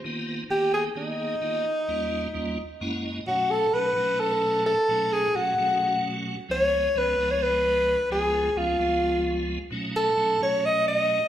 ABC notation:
X:1
M:7/8
L:1/16
Q:1/4=130
K:Ab
V:1 name="Alto saxophone"
z4 G2 A2 E6- | E8- E2 z4 | [K:Bmix] F2 A2 B4 A4 A2- | A2 G2 F6 z4 |
c4 B3 c B6 | G4 ^E8 z2 | z2 A4 c2 d2 d4 |]
V:2 name="Tonewheel organ"
z12 z2 | z8 z2 _g2 e2 | [K:Bmix] z12 z2 | z12 z2 |
z12 z2 | z12 z2 | z12 z2 |]
V:3 name="Tonewheel organ"
[E,B,_CEF]4 [E,B,CEG]4 [E,B,CEA]4 [E,B,CEF]2 | z2 [E,,G,B,DF]4 [E,,G,B,DF]2 z2 [_G,,A,B,D_F]4 | [K:Bmix] [B,,F,A,CD]4 [B,,F,A,CD]2 [B,,F,A,CD]6 z2 | [B,,F,A,CD]4 [B,,F,A,CF]2 [B,,F,A,CF]6 z2 |
[C,,^E,G,B,D]4 [C,,E,G,B,C]2 [C,,E,G,B,D]6 z2 | [C,,^E,G,B,^E]4 [C,,E,G,B,C]2 [C,,E,G,B,E]6 z2 | [B,,F,A,CD]4 [B,,F,A,CD]2 [B,,F,A,CF]6 z2 |]